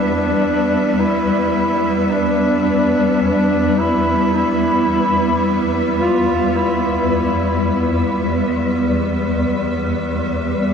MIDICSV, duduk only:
0, 0, Header, 1, 2, 480
1, 0, Start_track
1, 0, Tempo, 1111111
1, 1866, Time_signature, 4, 2, 24, 8
1, 4638, End_track
2, 0, Start_track
2, 0, Title_t, "Duduk"
2, 0, Program_c, 0, 69
2, 0, Note_on_c, 0, 62, 93
2, 430, Note_on_c, 0, 64, 80
2, 437, Note_off_c, 0, 62, 0
2, 872, Note_off_c, 0, 64, 0
2, 872, Note_on_c, 0, 64, 61
2, 911, Note_on_c, 0, 62, 92
2, 917, Note_off_c, 0, 64, 0
2, 1388, Note_off_c, 0, 62, 0
2, 1391, Note_on_c, 0, 62, 98
2, 1636, Note_on_c, 0, 64, 112
2, 1642, Note_off_c, 0, 62, 0
2, 1871, Note_off_c, 0, 64, 0
2, 1875, Note_on_c, 0, 64, 104
2, 2456, Note_off_c, 0, 64, 0
2, 2590, Note_on_c, 0, 65, 97
2, 2833, Note_on_c, 0, 64, 84
2, 2840, Note_off_c, 0, 65, 0
2, 3549, Note_off_c, 0, 64, 0
2, 4638, End_track
0, 0, End_of_file